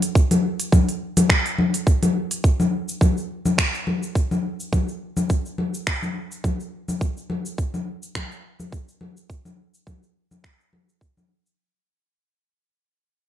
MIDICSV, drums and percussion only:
0, 0, Header, 1, 2, 480
1, 0, Start_track
1, 0, Tempo, 571429
1, 128, Time_signature, 4, 2, 24, 8
1, 11155, End_track
2, 0, Start_track
2, 0, Title_t, "Drums"
2, 20, Note_on_c, 9, 46, 58
2, 23, Note_on_c, 9, 69, 59
2, 104, Note_off_c, 9, 46, 0
2, 107, Note_off_c, 9, 69, 0
2, 129, Note_on_c, 9, 36, 108
2, 134, Note_on_c, 9, 69, 55
2, 213, Note_off_c, 9, 36, 0
2, 218, Note_off_c, 9, 69, 0
2, 261, Note_on_c, 9, 46, 49
2, 261, Note_on_c, 9, 64, 86
2, 264, Note_on_c, 9, 69, 31
2, 345, Note_off_c, 9, 46, 0
2, 345, Note_off_c, 9, 64, 0
2, 348, Note_off_c, 9, 69, 0
2, 501, Note_on_c, 9, 46, 60
2, 503, Note_on_c, 9, 69, 67
2, 585, Note_off_c, 9, 46, 0
2, 587, Note_off_c, 9, 69, 0
2, 608, Note_on_c, 9, 36, 102
2, 611, Note_on_c, 9, 64, 78
2, 613, Note_on_c, 9, 69, 54
2, 692, Note_off_c, 9, 36, 0
2, 695, Note_off_c, 9, 64, 0
2, 697, Note_off_c, 9, 69, 0
2, 744, Note_on_c, 9, 46, 34
2, 747, Note_on_c, 9, 69, 32
2, 828, Note_off_c, 9, 46, 0
2, 831, Note_off_c, 9, 69, 0
2, 982, Note_on_c, 9, 46, 58
2, 982, Note_on_c, 9, 64, 83
2, 985, Note_on_c, 9, 69, 63
2, 1066, Note_off_c, 9, 46, 0
2, 1066, Note_off_c, 9, 64, 0
2, 1069, Note_off_c, 9, 69, 0
2, 1088, Note_on_c, 9, 36, 107
2, 1092, Note_on_c, 9, 26, 73
2, 1095, Note_on_c, 9, 69, 53
2, 1172, Note_off_c, 9, 36, 0
2, 1176, Note_off_c, 9, 26, 0
2, 1179, Note_off_c, 9, 69, 0
2, 1224, Note_on_c, 9, 46, 33
2, 1227, Note_on_c, 9, 69, 35
2, 1308, Note_off_c, 9, 46, 0
2, 1311, Note_off_c, 9, 69, 0
2, 1331, Note_on_c, 9, 64, 81
2, 1415, Note_off_c, 9, 64, 0
2, 1462, Note_on_c, 9, 46, 54
2, 1465, Note_on_c, 9, 69, 65
2, 1546, Note_off_c, 9, 46, 0
2, 1549, Note_off_c, 9, 69, 0
2, 1569, Note_on_c, 9, 36, 102
2, 1573, Note_on_c, 9, 69, 57
2, 1653, Note_off_c, 9, 36, 0
2, 1657, Note_off_c, 9, 69, 0
2, 1702, Note_on_c, 9, 46, 48
2, 1702, Note_on_c, 9, 64, 83
2, 1705, Note_on_c, 9, 69, 35
2, 1786, Note_off_c, 9, 46, 0
2, 1786, Note_off_c, 9, 64, 0
2, 1789, Note_off_c, 9, 69, 0
2, 1941, Note_on_c, 9, 46, 54
2, 1944, Note_on_c, 9, 69, 65
2, 2025, Note_off_c, 9, 46, 0
2, 2028, Note_off_c, 9, 69, 0
2, 2050, Note_on_c, 9, 36, 101
2, 2051, Note_on_c, 9, 69, 55
2, 2134, Note_off_c, 9, 36, 0
2, 2135, Note_off_c, 9, 69, 0
2, 2182, Note_on_c, 9, 64, 79
2, 2185, Note_on_c, 9, 69, 31
2, 2266, Note_off_c, 9, 64, 0
2, 2269, Note_off_c, 9, 69, 0
2, 2425, Note_on_c, 9, 69, 67
2, 2509, Note_off_c, 9, 69, 0
2, 2529, Note_on_c, 9, 36, 100
2, 2533, Note_on_c, 9, 64, 74
2, 2535, Note_on_c, 9, 69, 54
2, 2613, Note_off_c, 9, 36, 0
2, 2617, Note_off_c, 9, 64, 0
2, 2619, Note_off_c, 9, 69, 0
2, 2667, Note_on_c, 9, 69, 31
2, 2751, Note_off_c, 9, 69, 0
2, 2902, Note_on_c, 9, 64, 71
2, 2905, Note_on_c, 9, 69, 65
2, 2986, Note_off_c, 9, 64, 0
2, 2989, Note_off_c, 9, 69, 0
2, 3009, Note_on_c, 9, 36, 94
2, 3012, Note_on_c, 9, 26, 76
2, 3015, Note_on_c, 9, 69, 54
2, 3093, Note_off_c, 9, 36, 0
2, 3096, Note_off_c, 9, 26, 0
2, 3099, Note_off_c, 9, 69, 0
2, 3145, Note_on_c, 9, 69, 32
2, 3229, Note_off_c, 9, 69, 0
2, 3251, Note_on_c, 9, 64, 67
2, 3335, Note_off_c, 9, 64, 0
2, 3385, Note_on_c, 9, 69, 60
2, 3469, Note_off_c, 9, 69, 0
2, 3489, Note_on_c, 9, 36, 98
2, 3493, Note_on_c, 9, 69, 54
2, 3573, Note_off_c, 9, 36, 0
2, 3577, Note_off_c, 9, 69, 0
2, 3623, Note_on_c, 9, 64, 76
2, 3626, Note_on_c, 9, 69, 32
2, 3707, Note_off_c, 9, 64, 0
2, 3710, Note_off_c, 9, 69, 0
2, 3865, Note_on_c, 9, 69, 64
2, 3949, Note_off_c, 9, 69, 0
2, 3969, Note_on_c, 9, 64, 69
2, 3970, Note_on_c, 9, 36, 101
2, 3972, Note_on_c, 9, 69, 51
2, 4053, Note_off_c, 9, 64, 0
2, 4054, Note_off_c, 9, 36, 0
2, 4056, Note_off_c, 9, 69, 0
2, 4103, Note_on_c, 9, 69, 33
2, 4187, Note_off_c, 9, 69, 0
2, 4340, Note_on_c, 9, 64, 77
2, 4343, Note_on_c, 9, 69, 70
2, 4424, Note_off_c, 9, 64, 0
2, 4427, Note_off_c, 9, 69, 0
2, 4451, Note_on_c, 9, 36, 107
2, 4451, Note_on_c, 9, 69, 55
2, 4535, Note_off_c, 9, 36, 0
2, 4535, Note_off_c, 9, 69, 0
2, 4583, Note_on_c, 9, 69, 33
2, 4667, Note_off_c, 9, 69, 0
2, 4689, Note_on_c, 9, 64, 66
2, 4773, Note_off_c, 9, 64, 0
2, 4823, Note_on_c, 9, 69, 63
2, 4907, Note_off_c, 9, 69, 0
2, 4930, Note_on_c, 9, 26, 77
2, 4931, Note_on_c, 9, 36, 97
2, 4933, Note_on_c, 9, 69, 52
2, 5014, Note_off_c, 9, 26, 0
2, 5015, Note_off_c, 9, 36, 0
2, 5017, Note_off_c, 9, 69, 0
2, 5061, Note_on_c, 9, 64, 71
2, 5064, Note_on_c, 9, 69, 31
2, 5145, Note_off_c, 9, 64, 0
2, 5148, Note_off_c, 9, 69, 0
2, 5306, Note_on_c, 9, 69, 58
2, 5390, Note_off_c, 9, 69, 0
2, 5410, Note_on_c, 9, 36, 100
2, 5411, Note_on_c, 9, 64, 71
2, 5414, Note_on_c, 9, 69, 55
2, 5494, Note_off_c, 9, 36, 0
2, 5495, Note_off_c, 9, 64, 0
2, 5498, Note_off_c, 9, 69, 0
2, 5546, Note_on_c, 9, 69, 33
2, 5630, Note_off_c, 9, 69, 0
2, 5783, Note_on_c, 9, 64, 66
2, 5785, Note_on_c, 9, 69, 60
2, 5867, Note_off_c, 9, 64, 0
2, 5869, Note_off_c, 9, 69, 0
2, 5889, Note_on_c, 9, 36, 102
2, 5892, Note_on_c, 9, 69, 53
2, 5973, Note_off_c, 9, 36, 0
2, 5976, Note_off_c, 9, 69, 0
2, 6024, Note_on_c, 9, 69, 32
2, 6108, Note_off_c, 9, 69, 0
2, 6129, Note_on_c, 9, 64, 73
2, 6213, Note_off_c, 9, 64, 0
2, 6263, Note_on_c, 9, 69, 68
2, 6347, Note_off_c, 9, 69, 0
2, 6369, Note_on_c, 9, 36, 101
2, 6371, Note_on_c, 9, 69, 54
2, 6453, Note_off_c, 9, 36, 0
2, 6455, Note_off_c, 9, 69, 0
2, 6501, Note_on_c, 9, 64, 68
2, 6504, Note_on_c, 9, 69, 32
2, 6585, Note_off_c, 9, 64, 0
2, 6588, Note_off_c, 9, 69, 0
2, 6743, Note_on_c, 9, 69, 65
2, 6827, Note_off_c, 9, 69, 0
2, 6849, Note_on_c, 9, 26, 76
2, 6849, Note_on_c, 9, 36, 104
2, 6849, Note_on_c, 9, 64, 67
2, 6851, Note_on_c, 9, 69, 54
2, 6933, Note_off_c, 9, 26, 0
2, 6933, Note_off_c, 9, 36, 0
2, 6933, Note_off_c, 9, 64, 0
2, 6935, Note_off_c, 9, 69, 0
2, 6984, Note_on_c, 9, 69, 32
2, 7068, Note_off_c, 9, 69, 0
2, 7221, Note_on_c, 9, 64, 63
2, 7224, Note_on_c, 9, 69, 56
2, 7305, Note_off_c, 9, 64, 0
2, 7308, Note_off_c, 9, 69, 0
2, 7329, Note_on_c, 9, 36, 90
2, 7331, Note_on_c, 9, 69, 52
2, 7413, Note_off_c, 9, 36, 0
2, 7415, Note_off_c, 9, 69, 0
2, 7463, Note_on_c, 9, 69, 33
2, 7547, Note_off_c, 9, 69, 0
2, 7567, Note_on_c, 9, 64, 69
2, 7651, Note_off_c, 9, 64, 0
2, 7703, Note_on_c, 9, 69, 64
2, 7787, Note_off_c, 9, 69, 0
2, 7809, Note_on_c, 9, 36, 96
2, 7811, Note_on_c, 9, 69, 51
2, 7893, Note_off_c, 9, 36, 0
2, 7895, Note_off_c, 9, 69, 0
2, 7940, Note_on_c, 9, 64, 69
2, 7943, Note_on_c, 9, 69, 30
2, 8024, Note_off_c, 9, 64, 0
2, 8027, Note_off_c, 9, 69, 0
2, 8183, Note_on_c, 9, 69, 68
2, 8267, Note_off_c, 9, 69, 0
2, 8289, Note_on_c, 9, 36, 97
2, 8291, Note_on_c, 9, 64, 67
2, 8294, Note_on_c, 9, 69, 51
2, 8373, Note_off_c, 9, 36, 0
2, 8375, Note_off_c, 9, 64, 0
2, 8378, Note_off_c, 9, 69, 0
2, 8426, Note_on_c, 9, 69, 31
2, 8510, Note_off_c, 9, 69, 0
2, 8662, Note_on_c, 9, 64, 67
2, 8665, Note_on_c, 9, 69, 65
2, 8746, Note_off_c, 9, 64, 0
2, 8749, Note_off_c, 9, 69, 0
2, 8769, Note_on_c, 9, 36, 99
2, 8772, Note_on_c, 9, 26, 65
2, 8775, Note_on_c, 9, 69, 48
2, 8853, Note_off_c, 9, 36, 0
2, 8856, Note_off_c, 9, 26, 0
2, 8859, Note_off_c, 9, 69, 0
2, 8907, Note_on_c, 9, 69, 31
2, 8991, Note_off_c, 9, 69, 0
2, 9012, Note_on_c, 9, 64, 64
2, 9096, Note_off_c, 9, 64, 0
2, 9149, Note_on_c, 9, 69, 61
2, 9233, Note_off_c, 9, 69, 0
2, 9250, Note_on_c, 9, 36, 93
2, 9256, Note_on_c, 9, 69, 50
2, 9334, Note_off_c, 9, 36, 0
2, 9340, Note_off_c, 9, 69, 0
2, 9385, Note_on_c, 9, 64, 73
2, 9388, Note_on_c, 9, 69, 32
2, 9469, Note_off_c, 9, 64, 0
2, 9472, Note_off_c, 9, 69, 0
2, 9628, Note_on_c, 9, 69, 61
2, 9712, Note_off_c, 9, 69, 0
2, 11155, End_track
0, 0, End_of_file